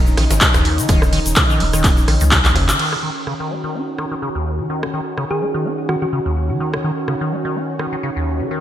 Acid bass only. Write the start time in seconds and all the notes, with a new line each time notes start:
0.17 D#3
0.31 D#3
0.41 C#3
0.54 D#2
0.78 D#3
0.89 D#3
1.02 C#3
1.13 D#3
1.36 C#3
1.50 D#3
1.60 A#3
1.73 D#3
1.84 D#4
2.08 D#3
2.21 D#3
2.32 C#3
2.45 D#2
2.69 D#3
2.79 D#3
2.92 C#3
3.03 D#3
3.27 C#3
3.40 D#3
3.51 A#3
3.64 D#3
3.75 D#4
3.98 D#3
4.12 D#3
4.22 C#3
4.35 D#2
4.59 D#3
4.70 D#3
4.83 C#3
4.94 D#3
5.18 C#3
5.31 D#3
5.41 A#3
5.54 D#3
5.65 D#4
5.89 D#3
6.02 D#3
6.13 C#3
6.26 D#2
6.50 D#3
6.60 D#3
6.74 C#3
6.84 D#3
7.08 C#3
7.21 D#3
7.32 A#3
7.45 D#3
7.56 D#4
7.79 D#3
7.93 D#3
8.03 C#3
8.16 D#2
8.40 D#3
8.51 D#3